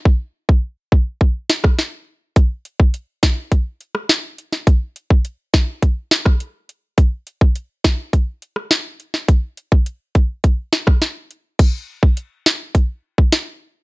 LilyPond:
\new DrumStaff \with { instrumentName = "Drums" } \drummode { \time 4/4 \tempo 4 = 104 bd8. bd16 r8 bd8 bd8 sn16 <bd ss>16 sn4 | <hh bd>8 hh16 bd16 hh8 <hh bd sn>8 <hh bd>8 hh16 ss16 <hh sn>8 hh16 sn16 | <hh bd>8 hh16 bd16 hh8 <hh bd sn>8 <hh bd>8 <hh sn>16 <bd ss>16 hh8 hh8 | <hh bd>8 hh16 bd16 hh8 <hh bd sn>8 <hh bd>8 hh16 ss16 <hh sn>8 hh16 sn16 |
<hh bd>8 hh16 bd16 hh8 <hh bd>8 <hh bd>8 <hh sn>16 <bd ss>16 <hh sn>8 hh8 | <cymc hh bd>8. bd16 hh8 sn8 <hh bd>8. bd16 <hh sn>4 | }